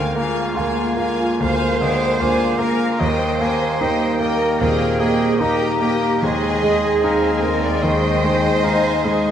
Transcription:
0.00 0.45 D2 medium
0.00 1.38 D2 medium
0.00 2.84 G#3 medium
0.00 0.15 A#3 medium
0.00 2.84 A#3 medium
0.00 2.96 A#3 medium
0.00 0.16 F5 medium
0.00 0.59 F5 medium
0.00 0.17 G5 medium
0.00 0.16 G#5 soft
0.15 0.81 A#3 soft
0.15 0.56 A#3 soft
0.15 1.43 F4 medium
0.15 1.38 F4 medium
0.15 1.13 F5 medium
0.15 0.56 F5 soft
0.15 0.57 G#5 soft
0.55 1.30 D2 medium
0.55 0.98 A#3 soft
0.55 1.24 F4 soft
0.55 0.98 F5 soft
0.55 1.42 G#5 medium
0.55 0.99 G#5 soft
0.97 1.65 A#3 soft
0.97 1.40 A#3 soft
0.97 1.41 F5 soft
0.97 1.42 G#5 soft
1.40 2.96 D2 soft
1.40 2.09 D2 medium
1.40 1.80 A#3 soft
1.40 2.61 C5 medium
1.40 1.84 F5 medium
1.40 1.81 F5 soft
1.40 1.83 F5 medium
1.40 1.81 G#5 medium
1.81 2.44 D3 soft
1.81 2.18 A#3 soft
1.81 2.20 D#5 medium
1.81 2.20 F5 soft
1.81 2.20 G5 medium
1.81 2.20 G#5 soft
2.19 2.89 D2 medium
2.19 2.58 A#3 soft
2.19 2.84 F4 soft
2.19 2.60 D5 medium
2.19 2.58 F5 soft
2.19 2.59 G#5 medium
2.19 2.60 G#5 soft
2.59 3.00 A#3 soft
2.59 2.98 A#3 soft
2.59 2.99 A#4 medium
2.59 3.01 A#4 medium
2.59 3.01 F5 medium
2.59 2.99 F5 soft
2.59 3.00 G#5 soft
2.59 3.00 A#5 medium
2.99 4.57 D#2 medium
2.99 3.69 D#2 medium
2.99 6.19 G3 medium
2.99 3.39 A#3 medium
2.99 4.62 A#3 medium
2.99 6.19 A#3 medium
2.99 4.22 C5 medium
2.99 4.21 C5 medium
2.99 3.40 D#5 soft
2.99 3.42 D#5 medium
2.99 3.40 G5 medium
2.99 3.42 G5 medium
3.41 3.79 A#3 soft
3.41 4.05 A#3 soft
3.41 3.80 D#5 soft
3.41 3.80 F5 medium
3.41 3.79 G5 soft
3.41 3.83 G#5 medium
3.80 4.49 D#2 medium
3.80 4.20 A#3 soft
3.80 4.45 D#4 soft
3.80 4.18 D#5 soft
3.80 4.19 G5 soft
3.80 4.59 G5 medium
3.80 4.62 G5 soft
4.20 4.84 A#3 soft
4.20 4.60 A#3 soft
4.20 4.63 A#4 medium
4.20 4.61 A#4 medium
4.20 4.59 D#5 soft
4.20 4.59 G5 medium
4.60 5.28 D#2 medium
4.60 5.25 A#2 soft
4.60 4.98 A#3 soft
4.60 5.41 C4 medium
4.60 5.43 G#4 medium
4.60 5.41 G#4 medium
4.60 4.99 D#5 soft
4.60 5.01 F5 medium
4.60 4.99 G5 soft
4.60 5.43 G5 soft
5.00 5.39 A#3 soft
5.00 5.65 A#3 soft
5.00 5.43 D#5 medium
5.00 5.40 D#5 soft
5.00 5.39 G5 soft
5.39 6.11 D#2 medium
5.39 6.22 A#3 medium
5.39 5.81 A#3 medium
5.39 6.06 D#4 medium
5.39 6.22 G4 medium
5.39 6.21 G4 medium
5.39 5.96 A#4 medium
5.39 5.81 D#5 soft
5.39 5.79 G5 medium
5.39 6.23 A#5 medium
5.80 6.23 A#3 soft
5.80 6.22 A#3 medium
5.80 6.22 D#5 soft
5.80 6.21 G5 soft
6.22 9.31 D#2 medium
6.22 7.79 D#2 medium
6.22 7.38 D#3 soft
6.22 6.99 G#3 medium
6.22 7.79 G#3 medium
6.22 7.79 D#4 medium
6.22 7.43 G#4 medium
6.22 6.65 C5 medium
6.22 6.99 D#5 medium
6.22 7.79 D#5 medium
6.22 6.99 G#5 medium
6.63 7.27 G#3 soft
6.63 7.03 D#5 medium
7.03 7.83 C4 soft
7.03 7.67 D#4 medium
7.03 7.81 C5 soft
7.03 7.85 F5 medium
7.03 7.81 G#5 medium
7.41 8.07 G#3 soft
7.41 7.64 A#4 medium
7.41 7.63 A#4 medium
7.62 7.84 D5 medium
7.62 7.83 D5 medium
7.82 8.48 D#3 soft
7.82 9.30 G#3 medium
7.82 9.31 G#3 medium
7.82 8.23 A#3 medium
7.82 9.31 D#4 medium
7.82 9.31 C5 medium
7.82 9.19 C5 medium
7.82 9.31 D#5 medium
7.82 8.26 D#5 medium
7.82 9.24 D#5 medium
7.82 8.65 G5 medium
8.23 8.62 G#3 medium
8.23 8.89 G#3 soft
8.23 8.65 G5 medium
8.63 9.31 G#3 medium
8.63 9.30 D#4 medium
8.63 9.07 F5 medium
8.63 9.05 G#5 medium
9.05 9.31 G#3 soft
9.05 9.31 D#5 medium
9.05 9.31 G#5 soft

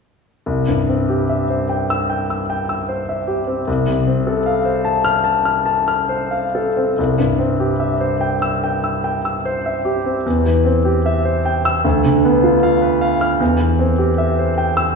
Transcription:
0.46 3.63 C2 soft
0.68 1.01 G2 soft
0.89 1.22 C4 soft
1.09 1.42 G4 soft
1.29 1.62 E5 soft
1.50 1.82 C5 soft
1.69 2.02 G5 soft
1.90 2.22 E6 soft
2.10 2.42 G5 soft
2.30 2.62 E6 soft
2.50 2.81 G5 soft
2.69 3.01 E6 soft
2.88 3.20 C5 soft
3.09 3.40 E5 soft
3.27 3.59 G4 soft
3.47 3.67 C4 soft
3.67 6.94 C2 soft
3.87 4.18 C3 soft
4.07 4.38 C4 soft
4.27 4.57 A4 soft
4.46 4.77 F5 soft
4.65 4.96 C5 soft
4.85 5.17 A5 soft
5.04 5.37 F6 medium
5.24 5.58 A5 soft
5.45 5.79 F6 soft
5.66 6.00 A5 soft
5.88 6.22 F6 soft
6.09 6.45 C5 soft
6.31 6.68 F5 soft
6.55 6.90 A4 soft
6.77 6.98 C4 soft
6.99 10.21 C2 soft
7.18 7.51 G2 soft
7.39 7.72 C4 soft
7.60 7.92 G4 soft
7.80 8.13 E5 soft
8.01 8.34 C5 soft
8.21 8.54 G5 soft
8.42 8.75 E6 medium
8.64 8.96 G5 soft
8.84 9.16 E6 soft
9.04 9.37 G5 soft
9.25 9.57 E6 soft
9.45 9.77 C5 soft
9.66 9.97 E5 soft
9.85 10.17 G4 soft
10.05 10.25 C4 soft
10.26 11.82 E2 soft
10.46 10.77 E3 soft
10.65 10.97 C4 soft
10.85 11.17 G4 soft
11.06 11.37 E5 soft
11.25 11.57 C5 soft
11.46 11.77 G5 soft
11.65 11.85 E6 medium
11.85 13.36 D2 soft
12.05 12.36 D3 soft
12.25 12.55 B3 soft
12.43 12.74 F4 soft
12.63 12.94 F5 soft
12.82 13.13 B4 soft
13.01 13.32 F5 soft
13.21 13.40 F6 medium
13.40 14.93 E2 soft
13.60 13.90 E3 soft
13.79 14.10 C4 soft
13.98 14.30 G4 soft
14.18 14.49 E5 soft
14.39 14.70 C5 soft
14.58 14.89 G5 soft
14.77 14.95 E6 medium

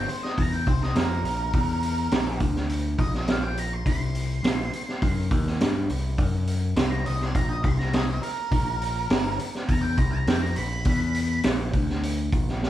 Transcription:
0.08 0.23 C5 loud
0.08 muted picked electric bass stroke soft
0.08 open hi-hat medium
0.23 0.37 D#5 medium
0.23 snare soft
0.38 0.65 E2 medium
0.38 0.52 A#5 loud
0.38 kick loud
0.38 open hi-hat medium
0.53 0.67 G5 medium
0.67 0.94 C2 medium
0.67 0.81 C5 medium
0.67 kick loud
0.67 open hi-hat medium
0.83 0.96 D#5 medium
0.83 snare soft
0.95 1.23 F2 medium
0.95 2.37 A#4 loud
0.95 snare medium
0.95 open hi-hat medium
1.24 1.51 A#1 medium
1.24 open hi-hat medium
1.53 2.08 E2 medium
1.53 kick loud
1.53 open hi-hat medium
1.83 open hi-hat medium
2.12 2.39 A#1 medium
2.12 snare loud
2.12 open hi-hat medium
2.40 2.95 D2 medium
2.40 kick loud
2.40 open hi-hat medium
2.56 snare soft
2.69 open hi-hat medium
2.99 3.82 A#1 medium
2.99 3.27 D#5 loud
2.99 kick loud
2.99 open hi-hat medium
3.14 snare soft
3.28 3.43 F5 loud
3.28 snare loud
3.28 open hi-hat medium
3.43 3.57 G5 medium
3.57 3.73 A#5 medium
3.57 open hi-hat medium
3.73 3.86 C6 medium
3.85 4.40 C2 medium
3.85 5.57 C6 medium
3.85 kick loud
3.85 open hi-hat medium
4.15 open hi-hat medium
4.43 4.71 A#1 medium
4.43 snare loud
4.43 open hi-hat medium
4.72 muted picked electric bass stroke soft
4.72 open hi-hat medium
4.88 snare soft
5.02 5.30 F#2 medium
5.02 kick loud
5.02 open hi-hat medium
5.31 5.59 D#2 medium
5.31 kick loud
5.31 open hi-hat medium
5.47 snare soft
5.61 5.88 G2 medium
5.61 snare loud
5.61 open hi-hat medium
5.90 6.17 C2 medium
5.90 open hi-hat medium
6.18 6.73 F#2 medium
6.18 kick loud
6.18 open hi-hat medium
6.47 open hi-hat medium
6.76 7.04 C2 loud
6.76 6.90 C6 medium
6.76 snare loud
6.76 open hi-hat medium
6.90 7.05 A#5 medium
7.06 7.34 C2 medium
7.06 7.20 D#5 loud
7.06 open hi-hat medium
7.21 7.36 C6 loud
7.21 snare soft
7.35 7.62 A#1 medium
7.35 7.50 A#5 medium
7.35 kick loud
7.35 open hi-hat medium
7.49 7.64 D#5 loud
7.64 8.19 C2 medium
7.64 7.78 C6 loud
7.64 kick loud
7.64 open hi-hat medium
7.79 7.93 A#5 medium
7.79 snare soft
7.93 8.22 D#5 loud
7.93 snare medium
7.93 open hi-hat medium
8.22 9.36 A#4 loud
8.22 muted picked electric bass stroke soft
8.22 open hi-hat medium
8.51 9.06 A#1 medium
8.51 kick loud
8.51 open hi-hat medium
8.81 open hi-hat medium
9.10 9.37 G1 medium
9.10 snare loud
9.10 open hi-hat medium
9.39 muted picked electric bass stroke soft
9.39 open hi-hat medium
9.55 snare soft
9.68 9.96 E2 loud
9.68 9.81 A#5 loud
9.68 kick loud
9.68 open hi-hat medium
9.82 9.97 G5 loud
9.97 10.25 C2 medium
9.97 10.11 A#5 loud
9.97 kick loud
9.97 open hi-hat medium
10.12 10.27 A#5 loud
10.27 10.54 F2 medium
10.27 10.41 G5 loud
10.27 snare loud
10.27 open hi-hat medium
10.42 10.56 A#5 loud
10.56 10.84 A#1 medium
10.56 11.42 B5 loud
10.56 open hi-hat medium
10.85 11.40 E2 medium
10.85 kick loud
10.85 open hi-hat medium
11.15 open hi-hat medium
11.43 11.72 A#1 loud
11.43 snare loud
11.43 open hi-hat medium
11.73 12.28 D2 medium
11.73 kick loud
11.73 open hi-hat medium
11.89 snare soft
12.03 open hi-hat medium
12.32 12.70 A#1 medium
12.32 kick loud
12.32 open hi-hat medium
12.48 snare soft
12.63 snare medium

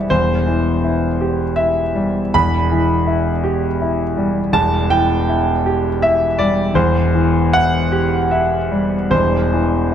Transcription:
0.00 0.13 E3 medium
0.00 0.33 G3 medium
0.00 0.13 E4 medium
0.00 0.14 G4 medium
0.00 0.10 E5 medium
0.00 0.14 F#5 medium
0.10 2.30 E1 medium
0.10 2.30 E2 medium
0.10 1.57 C5 loud
0.47 1.06 E3 medium
0.84 1.43 E4 soft
1.21 1.80 G4 medium
1.56 2.19 E4 medium
1.56 2.34 E5 medium
1.95 2.34 G3 medium
2.34 4.50 E1 medium
2.34 4.50 E2 medium
2.34 4.54 B5 loud
2.71 3.30 E3 medium
3.07 3.66 E4 medium
3.44 4.02 G4 medium
3.81 4.39 E4 medium
4.17 4.76 G3 medium
4.53 6.71 E1 medium
4.53 6.72 E2 medium
4.53 4.91 A5 loud
4.90 5.51 E3 medium
4.90 6.02 G5 loud
5.29 5.88 E4 medium
5.66 6.25 G4 medium
6.02 6.61 E4 medium
6.02 6.39 E5 loud
6.39 6.76 G3 medium
6.39 6.76 D5 loud
6.74 9.07 E1 medium
6.74 9.07 E2 medium
6.74 7.53 C5 medium
7.14 7.77 E3 medium
7.53 8.16 E4 medium
7.53 8.32 F#5 loud
7.92 8.55 G4 medium
8.31 8.95 E4 medium
8.31 9.11 E5 medium
8.72 9.36 G3 medium
9.10 9.95 E1 medium
9.10 9.95 E2 medium
9.10 9.95 C5 medium
9.52 9.95 E3 medium

